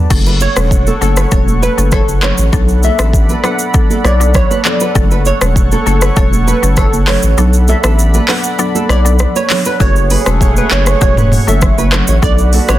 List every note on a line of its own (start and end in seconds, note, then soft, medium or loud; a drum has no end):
0.10 0.47 F#1 loud
0.10 0.53 F#3 medium
0.10 0.53 A3 medium
0.10 0.53 C#4 medium
0.10 2.51 A4 medium
0.10 0.53 A4 loud
0.10 2.51 C#5 medium
0.10 9.76 F#5 medium
0.10 2.51 C#6 medium
0.10 kick loud
0.10 crash medium
0.10 low conga medium
0.10 shaker medium
0.26 0.34 B4 medium
0.26 shaker soft
0.40 0.49 C#5 medium
0.40 0.55 C#5 medium
0.40 high conga medium
0.40 shaker medium
0.56 0.92 E1 medium
0.56 0.98 F#3 medium
0.56 0.98 A3 medium
0.56 0.98 C#4 medium
0.56 0.98 A4 medium
0.56 cross-stick loud
0.56 shaker loud
0.71 kick medium
0.71 shaker medium
0.87 0.95 A4 medium
0.87 high conga medium
0.87 shaker medium
1.01 1.25 F#1 medium
1.01 1.29 F#3 medium
1.01 1.29 A3 medium
1.01 1.29 C#4 medium
1.01 1.30 A4 medium
1.01 1.16 A4 medium
1.01 shaker soft
1.17 1.25 B4 medium
1.17 cross-stick medium
1.17 shaker medium
1.31 1.68 E1 loud
1.31 1.74 F#3 medium
1.31 1.74 A3 medium
1.31 1.74 C#4 medium
1.31 1.74 A4 loud
1.31 1.40 C#5 medium
1.31 kick loud
1.31 shaker medium
1.48 high conga medium
1.48 shaker soft
1.62 1.71 B4 medium
1.62 1.76 B4 medium
1.62 high conga medium
1.62 shaker medium
1.77 2.02 F#1 medium
1.77 2.00 F#3 medium
1.77 2.00 A3 medium
1.77 2.00 C#4 medium
1.77 2.00 A4 medium
1.77 shaker loud
1.92 2.06 A4 medium
1.92 2.01 C#5 medium
1.92 kick loud
1.92 cross-stick medium
1.92 low conga medium
1.92 shaker medium
2.08 2.32 F#1 medium
2.08 high conga medium
2.08 shaker medium
2.22 2.45 F#3 medium
2.22 2.46 A3 medium
2.22 2.46 C#4 medium
2.22 2.46 A4 medium
2.22 2.31 B4 medium
2.22 2.37 C#5 medium
2.22 cross-stick loud
2.22 clap loud
2.22 low conga medium
2.22 shaker medium
2.38 2.50 A1 medium
2.38 shaker loud
2.53 2.90 B1 loud
2.53 2.95 F#3 medium
2.53 2.95 B3 medium
2.53 2.95 D4 medium
2.53 9.76 A4 medium
2.53 2.95 A4 loud
2.53 4.93 D5 medium
2.53 4.93 B5 medium
2.53 kick loud
2.53 low conga medium
2.53 shaker medium
2.69 shaker soft
2.83 2.92 A4 medium
2.83 2.97 E5 medium
2.83 high conga medium
2.83 shaker medium
2.99 3.35 A1 medium
2.99 3.40 F#3 medium
2.99 3.40 B3 medium
2.99 3.40 D4 medium
2.99 3.40 A4 medium
2.99 3.07 A4 medium
2.99 cross-stick loud
2.99 shaker loud
3.13 kick medium
3.13 shaker medium
3.29 3.37 B4 medium
3.29 high conga medium
3.29 shaker medium
3.44 3.72 F#3 medium
3.44 3.72 B3 medium
3.44 3.72 D4 medium
3.44 3.72 A4 medium
3.44 3.52 B4 medium
3.44 3.58 F#5 medium
3.44 cross-stick medium
3.44 shaker soft
3.59 shaker medium
3.74 4.16 F#3 medium
3.74 4.16 B3 medium
3.74 4.16 D4 medium
3.74 4.17 A4 loud
3.74 kick loud
3.74 shaker medium
3.90 3.98 A4 medium
3.90 high conga medium
3.90 shaker medium
4.04 4.41 B1 medium
4.04 4.13 C#5 medium
4.04 4.19 D5 medium
4.04 cross-stick medium
4.04 high conga medium
4.04 shaker medium
4.20 4.42 F#3 medium
4.20 4.43 B3 medium
4.20 4.43 D4 medium
4.20 4.43 A4 medium
4.20 shaker loud
4.34 4.49 C#5 medium
4.34 kick loud
4.34 cross-stick medium
4.34 low conga medium
4.34 shaker medium
4.51 4.59 B4 medium
4.51 high conga medium
4.51 shaker medium
4.65 4.88 F#3 medium
4.65 4.88 B3 medium
4.65 4.88 D4 medium
4.65 4.88 A4 medium
4.65 4.79 D5 medium
4.65 clap loud
4.65 low conga medium
4.65 shaker medium
4.80 4.89 B4 medium
4.80 shaker loud
4.95 5.32 F#1 loud
4.95 5.38 F#3 loud
4.95 5.38 A3 medium
4.95 5.38 C#4 medium
4.95 5.38 A4 loud
4.95 7.35 C#5 medium
4.95 7.35 C#6 medium
4.95 kick loud
4.95 low conga medium
4.95 shaker medium
5.11 5.19 B4 medium
5.11 shaker soft
5.25 5.34 C#5 medium
5.25 5.40 C#5 medium
5.25 high conga medium
5.25 shaker medium
5.41 5.77 E1 loud
5.41 5.83 F#3 medium
5.41 5.83 A3 medium
5.41 5.83 C#4 medium
5.41 5.83 A4 medium
5.41 cross-stick loud
5.41 shaker loud
5.56 kick loud
5.56 shaker medium
5.72 5.80 A4 medium
5.72 high conga medium
5.72 shaker medium
5.86 6.10 F#1 medium
5.86 6.14 F#3 medium
5.86 6.14 A3 medium
5.86 6.14 C#4 medium
5.86 6.14 A4 medium
5.86 6.00 A4 medium
5.86 shaker soft
6.01 6.10 B4 medium
6.01 cross-stick medium
6.01 shaker medium
6.16 6.53 E1 loud
6.16 6.59 F#3 medium
6.16 6.59 A3 medium
6.16 6.59 C#4 medium
6.16 6.59 A4 loud
6.16 6.25 C#5 medium
6.16 kick loud
6.16 shaker medium
6.32 high conga medium
6.32 shaker medium
6.47 6.56 B4 medium
6.47 6.61 B4 medium
6.47 high conga medium
6.47 shaker medium
6.62 6.87 F#1 medium
6.62 6.85 F#3 medium
6.62 6.85 A3 medium
6.62 6.85 C#4 medium
6.62 6.85 A4 medium
6.62 shaker loud
6.77 6.91 A4 medium
6.77 6.86 C#5 medium
6.77 kick medium
6.77 cross-stick medium
6.77 low conga medium
6.77 shaker medium
6.93 7.17 F#1 medium
6.93 high conga medium
6.93 shaker medium
7.07 7.30 F#3 medium
7.07 7.30 A3 medium
7.07 7.31 C#4 medium
7.07 7.31 A4 medium
7.07 7.16 B4 medium
7.07 7.22 C#5 medium
7.07 cross-stick loud
7.07 clap loud
7.07 open hi-hat medium
7.07 low conga medium
7.07 shaker medium
7.23 7.35 A1 medium
7.23 shaker loud
7.37 7.74 B1 loud
7.37 7.80 F#3 medium
7.37 7.80 B3 medium
7.37 7.80 D4 medium
7.37 7.80 A4 loud
7.37 9.78 D5 medium
7.37 9.78 B5 medium
7.37 low conga medium
7.37 shaker medium
7.53 shaker soft
7.68 7.77 A4 medium
7.68 7.82 E5 medium
7.68 high conga medium
7.68 shaker medium
7.84 8.19 A1 medium
7.84 8.25 F#3 medium
7.84 8.25 B3 medium
7.84 8.25 D4 medium
7.84 8.25 A4 medium
7.84 7.92 A4 medium
7.84 cross-stick loud
7.84 shaker loud
7.99 shaker medium
8.14 8.22 B4 medium
8.14 high conga medium
8.14 shaker medium
8.28 8.57 F#3 medium
8.28 8.57 B3 medium
8.28 8.57 D4 medium
8.28 8.57 A4 medium
8.28 8.37 B4 medium
8.28 8.43 F#5 medium
8.28 cross-stick loud
8.28 clap loud
8.28 open hi-hat medium
8.28 shaker soft
8.44 shaker medium
8.59 9.01 F#3 loud
8.59 9.01 B3 medium
8.59 9.01 D4 medium
8.59 9.01 A4 loud
8.59 shaker medium
8.75 8.83 A4 medium
8.75 high conga medium
8.75 shaker medium
8.89 9.26 B1 loud
8.89 8.98 C#5 medium
8.89 9.03 D5 medium
8.89 cross-stick medium
8.89 high conga medium
8.89 shaker medium
9.05 9.27 F#3 medium
9.05 9.27 B3 medium
9.05 9.28 D4 medium
9.05 9.28 A4 medium
9.05 shaker loud
9.19 cross-stick medium
9.19 low conga medium
9.19 shaker medium
9.36 9.43 B4 medium
9.36 9.48 C#5 medium
9.36 high conga medium
9.36 shaker medium
9.50 9.73 F#3 medium
9.50 9.73 B3 medium
9.50 9.73 D4 medium
9.50 9.73 A4 medium
9.50 clap loud
9.50 open hi-hat medium
9.50 low conga medium
9.50 shaker medium
9.65 9.74 B4 medium
9.65 9.79 B4 medium
9.65 shaker loud
9.80 10.17 F#1 loud
9.80 11.88 C#3 medium
9.80 10.22 F#3 medium
9.80 10.22 A3 medium
9.80 12.79 A3 medium
9.80 11.88 A3 medium
9.80 10.23 C#4 medium
9.80 10.23 F#4 loud
9.80 11.88 G#4 loud
9.80 9.89 A4 loud
9.80 12.20 C#5 medium
9.80 9.94 C#5 loud
9.80 12.79 F#5 medium
9.80 12.20 C#6 medium
9.80 kick loud
9.80 shaker medium
9.96 shaker soft
10.10 10.19 B4 medium
10.10 open hi-hat medium
10.10 high conga medium
10.10 shaker medium
10.26 10.62 E1 loud
10.26 10.67 F#3 medium
10.26 10.68 A3 medium
10.26 10.68 C#4 medium
10.26 10.68 F#4 medium
10.26 10.39 A4 medium
10.26 cross-stick loud
10.26 shaker loud
10.41 10.50 C#5 medium
10.41 kick loud
10.41 shaker medium
10.57 10.70 B4 medium
10.57 high conga medium
10.57 shaker medium
10.71 10.95 F#1 medium
10.71 10.99 F#3 medium
10.71 10.99 A3 medium
10.71 10.99 C#4 medium
10.71 10.99 A4 medium
10.71 10.80 C#5 medium
10.71 10.85 C#5 medium
10.71 clap loud
10.71 shaker medium
10.86 cross-stick medium
10.86 shaker medium
11.01 11.38 E1 loud
11.01 11.43 F#3 medium
11.01 11.44 A3 medium
11.01 11.44 C#4 medium
11.01 11.44 F#4 loud
11.01 11.16 C#5 medium
11.01 kick loud
11.01 shaker medium
11.17 11.25 B4 medium
11.17 mid tom loud
11.17 high conga medium
11.17 shaker medium
11.32 mid tom medium
11.32 open hi-hat medium
11.32 high conga medium
11.32 shaker medium
11.47 11.72 F#1 medium
11.47 11.70 F#3 medium
11.47 11.70 A3 medium
11.47 11.70 C#4 medium
11.47 11.70 A4 medium
11.47 11.56 A4 medium
11.47 11.61 E5 medium
11.47 shaker loud
11.61 kick loud
11.61 cross-stick loud
11.61 low conga medium
11.61 shaker medium
11.78 12.02 F#1 medium
11.78 11.86 B4 medium
11.78 high conga medium
11.78 shaker medium
11.92 12.15 F#3 medium
11.92 12.15 A3 medium
11.92 12.15 C#4 medium
11.92 12.15 A4 medium
11.92 cross-stick loud
11.92 clap loud
11.92 low conga medium
11.92 shaker medium
12.08 12.20 A1 medium
12.08 12.16 C#5 medium
12.08 shaker loud
12.22 12.59 B1 loud
12.22 12.79 D3 medium
12.22 12.65 F#3 loud
12.22 12.65 B3 medium
12.22 12.79 B3 medium
12.22 12.65 D4 medium
12.22 12.79 F#4 loud
12.22 12.65 A4 loud
12.22 12.79 D5 medium
12.22 12.37 D5 loud
12.22 12.79 B5 medium
12.22 kick loud
12.22 shaker medium
12.38 shaker soft
12.53 12.62 A4 medium
12.53 open hi-hat medium
12.53 high conga medium
12.53 shaker medium
12.68 12.79 A1 medium
12.68 12.79 F#3 medium
12.68 12.79 B3 medium
12.68 12.79 D4 medium
12.68 12.79 A4 medium
12.68 12.77 B4 medium
12.68 12.79 C#5 medium
12.68 cross-stick loud
12.68 shaker loud